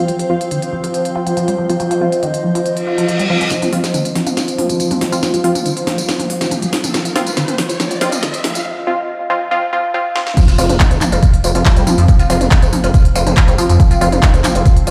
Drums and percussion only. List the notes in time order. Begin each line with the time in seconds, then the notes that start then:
0.08 closed hi-hat
0.19 closed hi-hat
0.41 closed hi-hat
0.51 closed hi-hat
0.62 closed hi-hat
0.84 closed hi-hat
0.94 closed hi-hat
1.05 closed hi-hat
1.27 closed hi-hat
1.37 closed hi-hat
1.48 closed hi-hat
1.70 closed hi-hat
1.80 closed hi-hat
1.91 closed hi-hat
2.12 closed hi-hat
2.23 closed hi-hat
2.34 closed hi-hat
2.55 closed hi-hat
2.66 closed hi-hat
2.77 closed hi-hat
2.98 closed hi-hat
3.08 closed hi-hat
3.19 closed hi-hat
3.41 closed hi-hat
3.51 snare, closed hi-hat, tambourine
3.62 closed hi-hat, mid tom, tambourine
3.73 open hi-hat
3.84 snare, closed hi-hat, tambourine
3.94 closed hi-hat, mid tom, tambourine
4.05 closed hi-hat, tambourine
4.15 snare, open hi-hat
4.27 closed hi-hat, mid tom, tambourine
4.37 snare, closed hi-hat, tambourine
4.48 closed hi-hat, tambourine
4.58 open hi-hat, mid tom
4.70 closed hi-hat, tambourine
4.80 closed hi-hat, tambourine
4.91 closed hi-hat, mid tom, tambourine
5.01 snare, open hi-hat
5.12 closed hi-hat, tambourine
5.23 snare, closed hi-hat, mid tom, tambourine
5.34 closed hi-hat, tambourine
5.44 open hi-hat
5.55 closed hi-hat, mid tom, tambourine
5.66 closed hi-hat, tambourine
5.77 closed hi-hat, tambourine
5.87 snare, open hi-hat, mid tom
5.98 closed hi-hat, tambourine
6.09 snare, closed hi-hat, tambourine
6.20 closed hi-hat, mid tom, tambourine
6.30 open hi-hat
6.41 snare, closed hi-hat, tambourine
6.51 closed hi-hat, mid tom, tambourine
6.62 closed hi-hat, tambourine
6.73 snare, open hi-hat
6.84 closed hi-hat, mid tom, tambourine
6.94 snare, closed hi-hat, tambourine
7.05 closed hi-hat, tambourine
7.16 snare, open hi-hat, mid tom
7.27 closed hi-hat, tambourine
7.37 snare, closed hi-hat, tambourine
7.48 closed hi-hat, mid tom, tambourine
7.58 snare, open hi-hat
7.69 closed hi-hat, tambourine
7.80 snare, closed hi-hat, mid tom, tambourine
7.91 closed hi-hat, tambourine
8.01 snare, open hi-hat
8.12 closed hi-hat, mid tom, tambourine
8.23 snare, closed hi-hat, tambourine
8.34 closed hi-hat, tambourine
8.44 snare, open hi-hat, mid tom
8.55 closed hi-hat, tambourine
10.16 snare
10.27 snare
10.37 kick, closed hi-hat, crash, tambourine
10.48 closed hi-hat, tambourine
10.58 open hi-hat, tambourine
10.69 closed hi-hat, mid tom, tambourine
10.80 kick, clap, closed hi-hat, tambourine
10.91 closed hi-hat, tambourine
11.01 clap, open hi-hat, mid tom, tambourine
11.12 closed hi-hat, tambourine
11.23 kick, closed hi-hat, tambourine
11.34 closed hi-hat
11.44 open hi-hat, tambourine
11.55 closed hi-hat, tambourine
11.65 kick, clap, closed hi-hat, tambourine
11.76 closed hi-hat, tambourine
11.87 open hi-hat, mid tom, tambourine
11.98 closed hi-hat, tambourine
12.08 kick, closed hi-hat, tambourine
12.19 closed hi-hat, tambourine
12.30 open hi-hat, tambourine
12.41 closed hi-hat, mid tom, tambourine
12.51 kick, clap, closed hi-hat, tambourine
12.62 closed hi-hat, tambourine
12.73 open hi-hat, mid tom, tambourine
12.84 closed hi-hat, tambourine
12.94 kick, closed hi-hat, tambourine
13.05 closed hi-hat
13.16 open hi-hat, tambourine
13.27 closed hi-hat, mid tom, tambourine
13.37 kick, clap, closed hi-hat
13.48 closed hi-hat, tambourine
13.58 open hi-hat, tambourine
13.69 closed hi-hat, tambourine
13.80 kick, closed hi-hat, tambourine
13.91 closed hi-hat, tambourine
14.01 open hi-hat, tambourine
14.12 closed hi-hat, mid tom, tambourine
14.23 kick, clap, closed hi-hat, tambourine
14.34 closed hi-hat, tambourine
14.44 clap, open hi-hat, mid tom, tambourine
14.55 closed hi-hat, tambourine
14.66 kick, closed hi-hat, tambourine
14.77 closed hi-hat
14.87 open hi-hat, tambourine